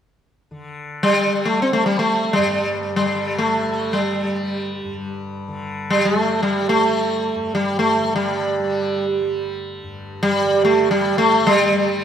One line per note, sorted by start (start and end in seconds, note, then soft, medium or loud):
0.51 2.99 D3 soft
1.03 1.48 G3 medium
1.14 1.76 G3 soft
1.45 1.62 A3 medium
1.62 1.73 C4 medium
1.73 3.62 G3 soft
1.73 1.85 A3 medium
1.86 1.99 G3 medium
1.99 2.33 A3 medium
2.33 4.84 G2 soft
2.33 2.93 G3 medium
2.96 5.48 D3 soft
2.96 3.40 G3 medium
3.38 3.95 A3 medium
3.62 4.23 G3 soft
3.93 4.96 G3 medium
4.23 6.08 G3 soft
4.85 7.35 G2 soft
5.48 7.98 D3 soft
5.90 6.06 G3 medium
6.05 6.72 G3 soft
6.05 6.42 A3 medium
6.43 6.69 G3 medium
6.69 8.59 G3 soft
6.69 7.54 A3 medium
7.36 9.83 G2 soft
7.55 7.79 G3 medium
7.79 8.15 A3 medium
7.98 10.43 D3 soft
8.16 9.06 G3 medium
8.59 9.21 G3 medium
9.21 11.04 G3 soft
9.83 12.04 G2 soft
10.23 10.64 G3 medium
10.43 12.04 D3 soft
10.65 10.88 A3 medium
10.91 11.17 G3 medium
11.04 11.66 G3 medium
11.18 11.48 A3 medium
11.47 12.04 G3 medium
11.66 12.04 G3 soft